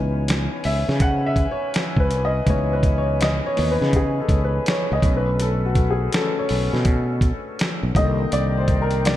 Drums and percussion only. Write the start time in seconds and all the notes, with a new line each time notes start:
0.28 finger snap, snare, closed hi-hat
0.64 open hi-hat
0.89 snare
1.00 kick, closed hi-hat
1.36 kick, closed hi-hat
1.74 finger snap, snare, closed hi-hat
1.97 kick
2.11 closed hi-hat
2.47 kick, closed hi-hat
2.83 kick, closed hi-hat
3.21 finger snap, snare, closed hi-hat
3.57 open hi-hat
3.82 snare
3.93 kick, closed hi-hat
4.29 kick, closed hi-hat
4.66 finger snap, snare, closed hi-hat
5.02 kick, closed hi-hat
5.40 closed hi-hat
5.75 kick, closed hi-hat
6.13 finger snap, snare, closed hi-hat
6.49 open hi-hat
6.75 snare
6.85 kick, closed hi-hat
7.21 kick, closed hi-hat
7.59 finger snap, snare, closed hi-hat
7.95 kick, closed hi-hat
8.32 closed hi-hat
8.68 kick, closed hi-hat
8.91 closed hi-hat
9.05 finger snap, snare, closed hi-hat